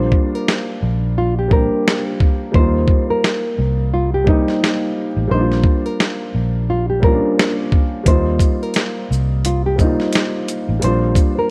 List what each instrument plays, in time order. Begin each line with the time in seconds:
Already playing: fingered electric bass A#1, upright piano G3 A#3 C4 D4 F4, nylon-string guitar C5
0.12 kick
0.35 nylon-string guitar A#4
0.48 snare
0.83 fingered electric bass A#1
1.18 nylon-string guitar F4
1.39 nylon-string guitar G4
1.48 upright piano G3 A#3 C4, kick
1.53 upright piano D4 G4, nylon-string guitar A#4
1.88 snare
2.20 kick
2.52 fingered electric bass D#2, upright piano G3 A#3 C4, nylon-string guitar C5, kick
2.56 upright piano D#4 F4
2.88 kick
3.10 nylon-string guitar A#4
3.24 snare
3.59 fingered electric bass C2
3.94 nylon-string guitar F4
4.14 nylon-string guitar G4
4.24 upright piano G3 A#3 C4, kick
4.28 nylon-string guitar D#4, upright piano D#4 G4
4.48 snare
4.64 snare
5.17 fingered electric bass A1
5.28 fingered electric bass A#1, upright piano G3 A#3 C4, nylon-string guitar C5
5.33 upright piano D4 D#4
5.41 upright piano F4
5.52 snare
5.64 kick
5.86 nylon-string guitar A#4
6.00 snare
6.35 fingered electric bass A#1
6.70 nylon-string guitar F4
6.90 nylon-string guitar G4
7.00 upright piano G3 A#3 C4, kick
7.04 upright piano C#4 F4, nylon-string guitar A#4
7.11 upright piano D4
7.39 snare
7.72 kick
8.03 fingered electric bass D#2, upright piano G3 A#3 C4, kick, closed hi-hat
8.08 upright piano D#4 F4, nylon-string guitar C5
8.39 kick, closed hi-hat, shaker
8.63 nylon-string guitar A#4
8.74 snare, closed hi-hat
9.11 fingered electric bass C2, shaker
9.45 nylon-string guitar F4, closed hi-hat
9.66 nylon-string guitar G4
9.76 upright piano G3 A#3 C4, kick, shaker
9.81 nylon-string guitar D#4, upright piano D#4 F4
10.00 snare
10.13 snare, closed hi-hat
10.48 closed hi-hat, shaker
10.69 fingered electric bass A1
10.79 fingered electric bass A#1, upright piano G3 A#3 C4, closed hi-hat
10.84 upright piano D4 F4, nylon-string guitar C5
11.15 kick, closed hi-hat, shaker
11.39 nylon-string guitar A#4